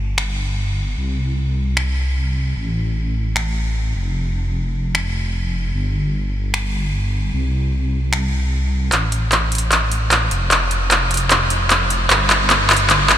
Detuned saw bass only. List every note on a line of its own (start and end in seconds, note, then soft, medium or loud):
0.00 0.96 G1 medium
0.97 2.54 C2 medium
2.56 3.94 A1 medium
3.96 5.72 F1 medium
5.74 7.31 G1 medium
7.33 8.90 C2 medium
8.92 10.29 A1 medium
10.31 12.08 F1 medium
12.10 13.18 G1 medium